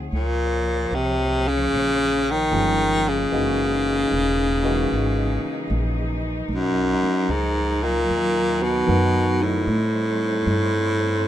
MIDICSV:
0, 0, Header, 1, 6, 480
1, 0, Start_track
1, 0, Tempo, 796813
1, 68, Time_signature, 4, 2, 24, 8
1, 6793, End_track
2, 0, Start_track
2, 0, Title_t, "Cello section"
2, 0, Program_c, 0, 48
2, 0, Note_on_c, 0, 60, 61
2, 0, Note_on_c, 0, 68, 76
2, 62, Note_off_c, 0, 60, 0
2, 65, Note_off_c, 0, 68, 0
2, 71, Note_on_c, 0, 58, 52
2, 72, Note_on_c, 0, 68, 65
2, 74, Note_on_c, 0, 53, 58
2, 76, Note_on_c, 0, 73, 58
2, 1974, Note_off_c, 0, 53, 0
2, 1975, Note_off_c, 0, 73, 0
2, 1988, Note_on_c, 0, 63, 60
2, 1993, Note_on_c, 0, 52, 58
2, 3881, Note_off_c, 0, 58, 0
2, 3882, Note_off_c, 0, 68, 0
2, 3886, Note_off_c, 0, 52, 0
2, 3916, Note_on_c, 0, 54, 62
2, 3924, Note_on_c, 0, 70, 73
2, 5805, Note_off_c, 0, 54, 0
2, 5809, Note_off_c, 0, 70, 0
2, 5827, Note_on_c, 0, 55, 59
2, 5827, Note_on_c, 0, 72, 71
2, 5834, Note_on_c, 0, 60, 57
2, 6759, Note_off_c, 0, 63, 0
2, 6779, Note_off_c, 0, 55, 0
2, 6793, Note_off_c, 0, 60, 0
2, 6793, Note_off_c, 0, 72, 0
2, 6793, End_track
3, 0, Start_track
3, 0, Title_t, "Grand piano"
3, 0, Program_c, 1, 0
3, 0, Control_c, 1, 64, 127
3, 0, Note_on_c, 1, 56, 38
3, 0, Note_on_c, 1, 57, 43
3, 0, Note_on_c, 1, 60, 41
3, 0, Note_on_c, 1, 63, 45
3, 0, Note_on_c, 1, 78, 52
3, 61, Note_off_c, 1, 56, 0
3, 70, Note_off_c, 1, 57, 0
3, 76, Control_c, 1, 64, 0
3, 77, Note_off_c, 1, 63, 0
3, 80, Note_off_c, 1, 60, 0
3, 88, Note_off_c, 1, 78, 0
3, 179, Control_c, 1, 64, 127
3, 1514, Note_on_c, 1, 53, 51
3, 1516, Note_on_c, 1, 56, 48
3, 1521, Note_on_c, 1, 58, 48
3, 1521, Note_on_c, 1, 61, 46
3, 1522, Note_on_c, 1, 68, 58
3, 1987, Note_off_c, 1, 56, 0
3, 1991, Note_off_c, 1, 53, 0
3, 1991, Note_off_c, 1, 58, 0
3, 1994, Note_off_c, 1, 61, 0
3, 1994, Note_on_c, 1, 52, 50
3, 1995, Note_off_c, 1, 68, 0
3, 1996, Note_on_c, 1, 56, 44
3, 1997, Control_c, 1, 64, 0
3, 2000, Note_on_c, 1, 58, 45
3, 2003, Note_on_c, 1, 63, 45
3, 2007, Note_on_c, 1, 66, 58
3, 2105, Control_c, 1, 64, 127
3, 2279, Note_off_c, 1, 52, 0
3, 2280, Note_off_c, 1, 56, 0
3, 2282, Note_off_c, 1, 58, 0
3, 2283, Note_off_c, 1, 63, 0
3, 2285, Note_off_c, 1, 66, 0
3, 2789, Note_on_c, 1, 52, 57
3, 2791, Note_on_c, 1, 56, 49
3, 2792, Note_on_c, 1, 58, 53
3, 2795, Note_on_c, 1, 63, 49
3, 2800, Note_on_c, 1, 66, 56
3, 3394, Note_off_c, 1, 52, 0
3, 3395, Note_off_c, 1, 56, 0
3, 3396, Note_off_c, 1, 58, 0
3, 3397, Note_off_c, 1, 63, 0
3, 3400, Note_off_c, 1, 66, 0
3, 3911, Control_c, 1, 64, 0
3, 4035, Control_c, 1, 64, 127
3, 5341, Note_on_c, 1, 54, 54
3, 5343, Note_on_c, 1, 51, 61
3, 5344, Note_on_c, 1, 70, 55
3, 5350, Note_on_c, 1, 59, 57
3, 5354, Note_on_c, 1, 66, 67
3, 5819, Note_off_c, 1, 54, 0
3, 5820, Note_off_c, 1, 51, 0
3, 5820, Note_off_c, 1, 70, 0
3, 5823, Note_off_c, 1, 59, 0
3, 5825, Note_off_c, 1, 66, 0
3, 5825, Control_c, 1, 64, 0
3, 6793, End_track
4, 0, Start_track
4, 0, Title_t, "Baritone saxophone"
4, 0, Program_c, 2, 67
4, 90, Note_on_c, 2, 46, 80
4, 570, Note_on_c, 2, 48, 79
4, 579, Note_off_c, 2, 46, 0
4, 892, Note_on_c, 2, 49, 88
4, 901, Note_off_c, 2, 48, 0
4, 1388, Note_on_c, 2, 51, 91
4, 1397, Note_off_c, 2, 49, 0
4, 1856, Note_on_c, 2, 49, 85
4, 1865, Note_off_c, 2, 51, 0
4, 3757, Note_off_c, 2, 49, 0
4, 3932, Note_on_c, 2, 42, 86
4, 4401, Note_on_c, 2, 44, 85
4, 4411, Note_off_c, 2, 42, 0
4, 4720, Note_on_c, 2, 46, 93
4, 4729, Note_off_c, 2, 44, 0
4, 5197, Note_on_c, 2, 47, 94
4, 5206, Note_off_c, 2, 46, 0
4, 5679, Note_on_c, 2, 45, 89
4, 5688, Note_off_c, 2, 47, 0
4, 6793, Note_off_c, 2, 45, 0
4, 6793, End_track
5, 0, Start_track
5, 0, Title_t, "Upright bass"
5, 0, Program_c, 3, 32
5, 72, Note_on_c, 3, 37, 65
5, 539, Note_off_c, 3, 37, 0
5, 549, Note_on_c, 3, 36, 71
5, 1018, Note_off_c, 3, 36, 0
5, 1042, Note_on_c, 3, 34, 72
5, 1502, Note_off_c, 3, 34, 0
5, 1516, Note_on_c, 3, 31, 73
5, 1978, Note_off_c, 3, 31, 0
5, 2000, Note_on_c, 3, 30, 67
5, 2461, Note_off_c, 3, 30, 0
5, 2477, Note_on_c, 3, 28, 76
5, 2938, Note_off_c, 3, 28, 0
5, 2962, Note_on_c, 3, 32, 67
5, 3251, Note_off_c, 3, 32, 0
5, 3434, Note_on_c, 3, 34, 75
5, 3893, Note_off_c, 3, 34, 0
5, 3906, Note_on_c, 3, 35, 68
5, 4200, Note_off_c, 3, 35, 0
5, 4388, Note_on_c, 3, 37, 76
5, 4849, Note_off_c, 3, 37, 0
5, 4877, Note_on_c, 3, 39, 71
5, 5334, Note_off_c, 3, 39, 0
5, 5353, Note_on_c, 3, 42, 74
5, 5811, Note_off_c, 3, 42, 0
5, 5826, Note_on_c, 3, 45, 67
5, 6288, Note_off_c, 3, 45, 0
5, 6305, Note_on_c, 3, 43, 74
5, 6772, Note_off_c, 3, 43, 0
5, 6793, End_track
6, 0, Start_track
6, 0, Title_t, "Muted upright bass strokes"
6, 4233, Note_on_c, 9, 29, 33
6, 4293, Note_off_c, 9, 29, 0
6, 6793, End_track
0, 0, End_of_file